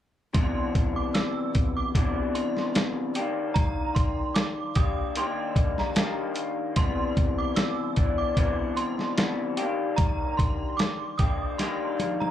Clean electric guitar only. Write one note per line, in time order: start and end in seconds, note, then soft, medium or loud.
0.33 1.94 C3 medium
0.33 1.95 E3 medium
0.33 1.96 B3 medium
0.38 1.97 D4 medium
1.95 3.16 C3 medium
1.95 3.16 E3 medium
1.95 3.16 B3 medium
1.95 3.17 D4 medium
3.16 4.78 A#3 soft
3.16 4.77 D4 medium
3.16 4.76 G4 medium
3.20 4.78 D#3 soft
4.76 5.17 A#3 soft
4.76 5.17 D4 soft
4.76 5.16 G4 soft
5.17 5.96 D#3 medium
5.17 5.96 A#3 medium
5.17 5.98 D4 medium
5.17 5.99 G4 medium
5.97 6.77 D#3 medium
5.97 6.77 A#3 medium
5.97 6.78 D4 medium
5.97 9.50 G4 medium
6.77 7.97 C3 medium
6.77 7.97 E3 medium
6.77 7.97 B3 medium
6.77 7.97 D4 medium
7.97 8.37 E3 soft
7.97 8.37 B3 soft
7.97 8.37 D4 soft
8.37 9.16 C3 medium
8.37 9.17 E3 medium
8.37 9.18 B3 medium
8.37 9.19 D4 medium
9.17 9.58 C3 medium
9.17 9.58 E3 medium
9.17 9.59 B3 medium
9.17 9.58 D4 medium
9.57 11.20 A#3 soft
9.57 11.21 D4 medium
9.57 11.19 G4 medium
9.61 11.21 D#3 soft
11.20 11.59 A#3 soft
11.20 11.60 D4 soft
11.20 11.60 G4 soft
11.60 12.31 D#3 medium
11.60 12.31 A#3 medium
11.60 12.31 D4 medium
11.60 12.31 G4 medium